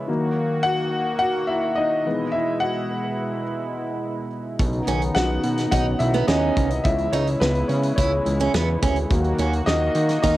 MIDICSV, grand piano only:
0, 0, Header, 1, 2, 480
1, 0, Start_track
1, 0, Tempo, 564122
1, 70, Time_signature, 4, 2, 24, 8
1, 8824, End_track
2, 0, Start_track
2, 0, Title_t, "Grand piano"
2, 0, Program_c, 0, 0
2, 0, Control_c, 0, 64, 127
2, 0, Note_on_c, 0, 61, 65
2, 0, Note_on_c, 0, 71, 92
2, 0, Note_on_c, 0, 73, 82
2, 63, Note_on_c, 0, 51, 58
2, 67, Note_on_c, 0, 54, 52
2, 73, Note_on_c, 0, 58, 65
2, 80, Control_c, 0, 64, 0
2, 86, Note_off_c, 0, 73, 0
2, 87, Note_off_c, 0, 71, 0
2, 88, Note_off_c, 0, 61, 0
2, 242, Control_c, 0, 64, 127
2, 534, Note_on_c, 0, 78, 113
2, 555, Note_on_c, 0, 66, 85
2, 752, Note_off_c, 0, 51, 0
2, 754, Note_off_c, 0, 54, 0
2, 757, Note_off_c, 0, 58, 0
2, 997, Note_off_c, 0, 78, 0
2, 999, Note_off_c, 0, 66, 0
2, 1010, Note_on_c, 0, 78, 111
2, 1034, Note_on_c, 0, 66, 84
2, 1066, Note_off_c, 0, 78, 0
2, 1087, Note_off_c, 0, 66, 0
2, 1252, Note_on_c, 0, 76, 97
2, 1274, Note_on_c, 0, 64, 80
2, 1492, Note_on_c, 0, 75, 92
2, 1495, Note_off_c, 0, 64, 0
2, 1508, Note_off_c, 0, 76, 0
2, 1514, Note_on_c, 0, 63, 77
2, 1745, Note_on_c, 0, 52, 58
2, 1750, Note_on_c, 0, 56, 53
2, 1757, Note_on_c, 0, 59, 67
2, 1762, Control_c, 0, 64, 0
2, 1894, Control_c, 0, 64, 127
2, 1958, Note_off_c, 0, 63, 0
2, 1972, Note_on_c, 0, 76, 94
2, 1995, Note_off_c, 0, 75, 0
2, 1997, Note_on_c, 0, 64, 75
2, 2214, Note_on_c, 0, 78, 107
2, 2216, Note_off_c, 0, 64, 0
2, 2228, Note_off_c, 0, 76, 0
2, 2237, Note_on_c, 0, 66, 74
2, 2907, Note_off_c, 0, 78, 0
2, 2919, Note_off_c, 0, 66, 0
2, 3633, Note_off_c, 0, 52, 0
2, 3635, Note_off_c, 0, 56, 0
2, 3639, Note_off_c, 0, 59, 0
2, 3919, Control_c, 0, 64, 0
2, 4089, Control_c, 0, 64, 127
2, 4142, Note_on_c, 0, 51, 54
2, 4148, Note_on_c, 0, 59, 51
2, 4152, Note_on_c, 0, 61, 62
2, 4380, Note_on_c, 0, 78, 113
2, 4394, Note_on_c, 0, 66, 85
2, 4831, Note_off_c, 0, 51, 0
2, 4831, Note_off_c, 0, 78, 0
2, 4835, Note_off_c, 0, 59, 0
2, 4836, Note_off_c, 0, 61, 0
2, 4838, Note_off_c, 0, 66, 0
2, 4862, Note_on_c, 0, 78, 104
2, 4866, Note_on_c, 0, 51, 51
2, 4870, Note_on_c, 0, 59, 47
2, 4875, Note_on_c, 0, 61, 58
2, 4878, Note_on_c, 0, 66, 80
2, 5084, Note_off_c, 0, 51, 0
2, 5086, Note_off_c, 0, 59, 0
2, 5088, Note_off_c, 0, 61, 0
2, 5097, Note_off_c, 0, 66, 0
2, 5097, Note_on_c, 0, 76, 107
2, 5113, Note_off_c, 0, 78, 0
2, 5114, Note_on_c, 0, 64, 86
2, 5335, Note_off_c, 0, 64, 0
2, 5340, Note_on_c, 0, 75, 101
2, 5351, Note_off_c, 0, 76, 0
2, 5355, Note_on_c, 0, 63, 73
2, 5799, Note_off_c, 0, 63, 0
2, 5818, Note_on_c, 0, 76, 103
2, 5825, Note_on_c, 0, 52, 59
2, 5832, Note_on_c, 0, 56, 54
2, 5835, Note_on_c, 0, 61, 61
2, 5837, Note_on_c, 0, 64, 76
2, 5839, Note_off_c, 0, 75, 0
2, 5841, Control_c, 0, 64, 0
2, 6011, Control_c, 0, 64, 127
2, 6056, Note_off_c, 0, 64, 0
2, 6060, Note_on_c, 0, 73, 85
2, 6064, Note_off_c, 0, 61, 0
2, 6071, Note_off_c, 0, 76, 0
2, 6077, Note_on_c, 0, 61, 71
2, 6297, Note_off_c, 0, 61, 0
2, 6297, Note_on_c, 0, 71, 99
2, 6312, Note_off_c, 0, 73, 0
2, 6315, Note_on_c, 0, 59, 77
2, 6513, Note_off_c, 0, 52, 0
2, 6517, Note_off_c, 0, 56, 0
2, 6534, Note_on_c, 0, 73, 80
2, 6536, Note_off_c, 0, 59, 0
2, 6551, Note_off_c, 0, 71, 0
2, 6552, Note_on_c, 0, 61, 69
2, 6760, Note_off_c, 0, 73, 0
2, 6773, Note_on_c, 0, 73, 85
2, 6774, Note_off_c, 0, 61, 0
2, 6793, Note_on_c, 0, 61, 67
2, 7016, Note_off_c, 0, 61, 0
2, 7023, Note_on_c, 0, 52, 58
2, 7025, Note_on_c, 0, 56, 52
2, 7029, Note_on_c, 0, 61, 60
2, 7242, Note_off_c, 0, 52, 0
2, 7243, Note_off_c, 0, 56, 0
2, 7245, Note_off_c, 0, 61, 0
2, 7467, Note_off_c, 0, 73, 0
2, 7743, Note_on_c, 0, 51, 57
2, 7748, Note_on_c, 0, 54, 56
2, 7752, Note_on_c, 0, 58, 63
2, 7761, Control_c, 0, 64, 0
2, 7912, Control_c, 0, 64, 127
2, 8221, Note_on_c, 0, 75, 111
2, 8236, Note_on_c, 0, 63, 83
2, 8679, Note_off_c, 0, 63, 0
2, 8687, Note_off_c, 0, 75, 0
2, 8700, Note_on_c, 0, 75, 101
2, 8718, Note_on_c, 0, 63, 80
2, 8824, Note_off_c, 0, 51, 0
2, 8824, Note_off_c, 0, 54, 0
2, 8824, Note_off_c, 0, 58, 0
2, 8824, Note_off_c, 0, 63, 0
2, 8824, Note_off_c, 0, 75, 0
2, 8824, End_track
0, 0, End_of_file